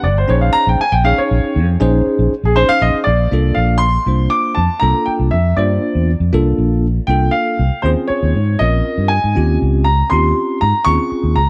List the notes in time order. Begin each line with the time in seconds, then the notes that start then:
0.03 G1 D5
0.18 C5
0.28 A#1 C#4 D#4 G#4 C5 C#5
0.41 F5
0.53 A#5, muted fingered electric bass stroke
0.67 A#1 G5
0.80 G#5, muted fingered electric bass stroke
0.92 A#1 G5
1.04 C#4 D#4 G#4 C#5 F5
1.18 C#5
1.31 A#1
1.56 F2
1.80 A#1 C#4 D#4 G#4 C5
2.07 muted fingered electric bass stroke
2.19 A#1
2.32 muted fingered electric bass stroke
2.44 A#1 G#4
2.55 C#4 D#4 G#4 C5
2.69 F5
2.82 A#1 D#5
3.04 A#1 D5
3.31 C2 A#3 D4 F4 A4
3.55 A#1 F5
3.78 C6
4.06 C2 A#3 D4 F4 C5
4.30 D6
4.55 F2 A5
4.80 C2 A#3 D4 F4 A4 A#5
5.06 G5, muted fingered electric bass stroke
5.20 C2
5.31 F2 E5
5.57 G2 A#3 D4 F4 C5 D5
5.95 E2
6.20 F2
6.33 C2 A#3 D4 F4 A4
6.58 A#1
7.07 C2 A#3 D4 F4 A4 G5
7.31 F5
7.59 C2
7.82 D#2 C4 C#4 F4 G#4 C5
8.08 C#5, muted fingered electric bass stroke
8.23 D#2
8.35 G#2
8.59 A#1 C4 C#4 F4 A#4 D#5
8.98 G2
9.08 G#5
9.24 G#2
9.35 D#2 C4 C#4 F4 G4
9.62 C#2
9.84 A#5
10.10 D#2 C4 C#4 F4 G4 C6
10.61 G#2 A#5
10.85 D#2 C4 C#4 F4 G#4 C#6
11.12 muted fingered electric bass stroke
11.24 D#2
11.36 C#2 A#5